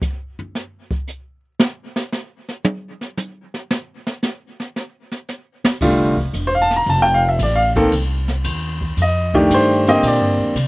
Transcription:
0.02 kick, hi-hat pedal
0.39 floor tom
0.55 snare
0.91 kick
1.08 hi-hat pedal
1.60 snare
1.96 snare
2.12 snare, hi-hat pedal
2.49 snare
2.65 high tom
3.01 snare
3.17 hi-hat pedal, high tom
3.54 snare
3.71 snare
4.07 snare
4.23 snare, hi-hat pedal
4.60 snare
4.76 snare
5.12 snare
5.29 snare, hi-hat pedal
5.64 muted upright bass stroke, snare
5.81 F1 D3 G3 A3 F4, kick, crash
6.17 kick
6.33 E1, kick, hi-hat pedal, ride
6.47 C5
6.55 F5
6.62 A5
6.70 snare, ride
6.76 A#5
6.86 F1 A5, kick, ride
7.02 G5
7.14 F5
7.29 E5
7.39 A1, kick, hi-hat pedal, ride
7.43 D5
7.56 F5
7.76 D#3 A#3 C4 A4, kick, ride
7.92 C2, kick, ride
8.28 snare
8.44 D#2, kick, hi-hat pedal, ride
8.81 kick
8.97 F2, kick, ride
9.02 D#5
9.34 D#3 A3 D4 G4, kick
9.50 G2, kick, hi-hat pedal, ride
9.54 C5
9.87 D3 A#3 C4 G4 D#5, ride
10.03 A#2, kick, ride
10.07 D5
10.20 G2
10.38 F2
10.55 C3, kick, hi-hat pedal, ride

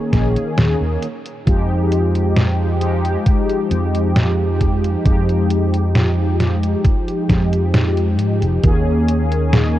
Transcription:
Already playing: D#3 A#3 C#4 G#4
0.12 A#1 D#3 A#3 C#4 G#4, kick, snare, closed hi-hat
0.36 muted fingered electric bass stroke, closed hi-hat
0.58 D#2, snare, closed hi-hat
0.81 D#2
1.03 closed hi-hat
1.26 closed hi-hat
1.45 F2 F3 G#3 D#4 G4, kick, closed hi-hat
1.92 closed hi-hat
2.15 closed hi-hat
2.37 snare, closed hi-hat
2.80 F3 G#3 D#4 G4, closed hi-hat
3.05 closed hi-hat
3.26 kick, closed hi-hat
3.50 closed hi-hat
3.71 F2, closed hi-hat
3.95 closed hi-hat
4.16 snare, closed hi-hat
4.61 kick, closed hi-hat
4.84 closed hi-hat
5.04 F2 F3 G#3 D#4 G4, kick, closed hi-hat
5.29 closed hi-hat
5.50 closed hi-hat
5.74 closed hi-hat
5.95 snare, closed hi-hat
6.39 F3 G#3 D#4 G4, snare, closed hi-hat
6.63 closed hi-hat
6.85 kick, closed hi-hat
7.08 closed hi-hat
7.28 F2 F3 G#3 D#4 G4, kick, snare, closed hi-hat
7.53 closed hi-hat
7.74 snare, closed hi-hat
7.97 closed hi-hat
8.19 G#2, closed hi-hat
8.42 F1, closed hi-hat
8.62 D#2 D#3 A#3 C#4 G#4, kick, closed hi-hat
9.08 closed hi-hat
9.32 closed hi-hat
9.53 snare, closed hi-hat

